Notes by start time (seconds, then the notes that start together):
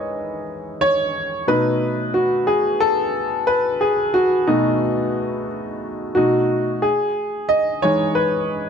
Already playing: E3 G#3 D#4 G#4 B4 C#5 D#5
0.81 C#5
1.47 B2 A3 D#4 B4
2.14 F#4
2.47 G#4
2.80 A4
3.47 B4
3.81 G#4
4.14 F#4
4.47 B2 A3 D#4
6.15 B2 A3 D#4 F#4
6.82 G#4
7.49 D#5
7.82 E3 G#3 D#4 C#5
8.15 B4